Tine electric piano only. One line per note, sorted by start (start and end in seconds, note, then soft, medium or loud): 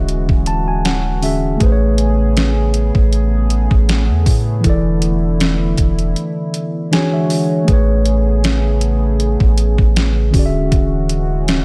0.00 1.17 D3 medium
0.00 1.18 C#4 medium
0.00 1.19 F#4 medium
0.00 1.20 G#4 medium
0.00 1.21 E5 medium
0.47 0.66 A5 medium
0.68 0.84 G#5 medium
0.85 1.20 F#5 medium
1.21 1.60 D3 medium
1.21 1.60 C#4 medium
1.21 1.61 F#4 soft
1.21 1.59 G#4 medium
1.21 1.25 E5 medium
1.26 1.62 E5 medium
1.57 4.58 A3 medium
1.57 4.60 G#4 medium
1.63 4.61 B4 medium
1.63 1.70 C5 medium
1.72 4.66 C#5 medium
4.61 6.86 E3 medium
4.61 6.88 E4 medium
4.67 6.89 A4 medium
4.67 6.91 D5 medium
6.91 7.67 E3 medium
6.91 7.68 D4 medium
6.91 7.68 F#4 medium
6.91 7.66 G#4 medium
6.91 7.12 G#5 medium
6.95 7.70 C#5 medium
7.13 7.65 E5 medium
7.65 10.28 A3 medium
7.65 10.30 G#4 medium
7.70 10.31 B4 medium
7.70 10.32 C#5 medium
10.30 11.65 D3 medium
10.30 11.65 C#4 medium
10.35 11.65 F#4 medium
10.35 11.65 G#4 medium
10.39 10.43 D5 medium
10.46 11.65 E5 medium